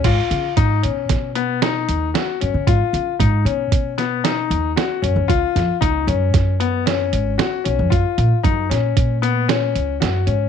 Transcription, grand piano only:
X:1
M:5/4
L:1/8
Q:1/4=114
K:G#dor
V:1 name="Grand piano"
E2 D C2 B, D2 F C | E2 D C2 B, D2 F C | E2 D C2 B, C2 F C | E2 D C2 B, C2 F C |]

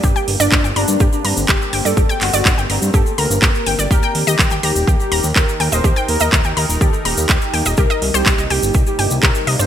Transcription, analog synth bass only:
X:1
M:4/4
L:1/16
Q:1/4=124
K:Gm
V:1 name="Analog synth bass" clef=bass
G,,, z G,,, G,,, G,,, G,,, G,,, G,, G,,, z G,, G,,, G,,, z G,,, G,, | G,,, z G,,, G,,, G,,, G,,, G,,, G,, G,,, z D,, G,,, G,,, z G,,, G,,, | E,, z E,, E,, E,, E,, E,, E,,, E,, z E,,, E,, E,, z E,, E,,, | E,, z E,, E,, E,, E,, E,, E,,, E,, z E,,, E,, E,, z E,, E,,, |
C,, z C,, C,, C,, C,, C,, G,,, C,, z G,,, C,, C,, z C,, G,,, |]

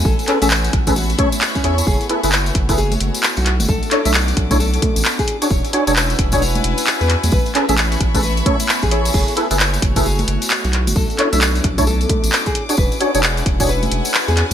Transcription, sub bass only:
X:1
M:4/4
L:1/16
Q:"Swing 16ths" 1/4=132
K:Emix
V:1 name="Sub bass" clef=bass
A,,, z2 A,,,3 A,,,4 z4 E,, z | F,,, z2 F,,,3 F,,,4 F,,, z2 B,,,2 F,,, | B,,, z2 B,,,3 B,,,4 z A,,, z4 | E,,, z2 E,,,3 E,,,4 E,,, z2 E,, z E,, |
A,,, z2 A,,,3 A,,,4 z3 A,,,3 | F,,, z2 F,,,3 F,,,4 F,,, z2 B,,,2 F,,, | B,,, z2 B,,,3 B,,,4 z A,,, z4 | E,,, z2 E,,,3 E,,,4 E,,, z2 E,, z2 |]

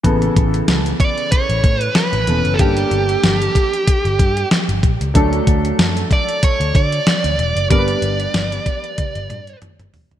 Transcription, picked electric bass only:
X:1
M:4/4
L:1/16
Q:"Swing 16ths" 1/4=94
K:Amix
V:1 name="Picked electric bass" clef=bass
A,,,2 A,,,2 C,,2 z3 A,,, A,,2 z A,,, E,,, F,,, | G,,,2 G,,,2 G,,,2 z3 G,,, G,,2 z G,,, _B,,, C,, | D,,2 D,,2 F,,2 z3 D,, D,2 z D,, E,,, F,,, | G,,,2 G,,,2 G,,,2 z3 G,,, G,,2 z G,,, E,,, F,,, |]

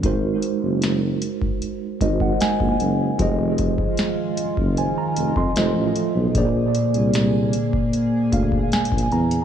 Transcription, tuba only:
X:1
M:4/4
L:1/16
Q:1/4=76
K:Fphr
V:1 name="Tuba" clef=bass
A,,,2 z G,,,4 z3 A,,,2 z B,,, G,,,2 | F,,,4 z2 G,,, G,,,2 z F,,, F,, F,,, =A,,, z _C,, | B,,,2 z C,,4 z3 =D,,2 z B,,, _F,,2 |]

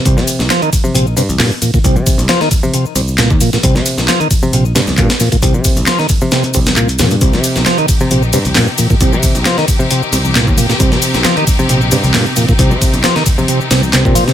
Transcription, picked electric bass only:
X:1
M:4/4
L:1/16
Q:"Swing 16ths" 1/4=134
K:Cm
V:1 name="Picked electric bass" clef=bass
C,, C,2 C,, z3 C, B,,,2 G,, C,, G,, z3 | C,, C,2 C,, z3 C, z2 C,,3 E,, z2 | C,, C,2 C,, z3 C, B,,,2 G,, C,, G,, z3 | C,, C,2 C,, z3 C,3 C,,4 F,, G,, |
C,, C,2 C,, z3 C, B,,,2 G,, C,, G,, z3 | C,, C,2 C,, z3 C, z2 C,,3 E,, z2 | C,, C,2 C,, z3 C, B,,,2 G,, C,, G,, z3 | C,, C,2 C,, z3 C, z2 C,,2 C,, B,,2 C, |]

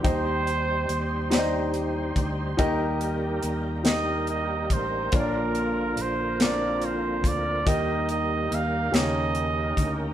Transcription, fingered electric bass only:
X:1
M:6/8
L:1/8
Q:3/8=47
K:Eb
V:1 name="Fingered electric bass" clef=bass
E,,2 E,,3 D,, | E,,2 E,,3 =A,,, | B,,,2 B,,,3 D,, | E,,2 E,, E,,2 D,, |]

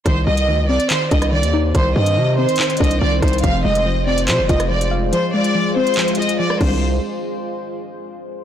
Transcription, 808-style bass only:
X:1
M:4/4
L:1/16
Q:1/4=142
K:Cm
V:1 name="808-style bass" clef=bass
C,,2 C,,2 D,,3/2 C,,3/2 z3 C,,3 E,,3 | C,,2 G,,2 C,3 z3 C,,2 C,,2 C,,2 | F,,,2 F,,,6 C, F,,, F,,,6 | z12 z2 C,,2- |
C,,2 z12 z2 |]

